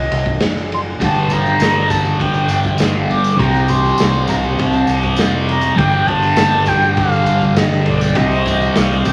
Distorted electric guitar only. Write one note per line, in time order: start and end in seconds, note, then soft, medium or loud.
1.00 3.37 G2 medium
1.00 3.36 D3 medium
1.00 3.38 G3 medium
3.37 5.75 C3 medium
3.37 5.78 G3 medium
3.37 5.76 C4 medium
5.76 8.13 G2 medium
5.76 8.14 D3 medium
5.76 8.14 G3 loud
8.15 9.13 C3 medium
8.15 9.13 G3 medium
8.15 9.13 C4 medium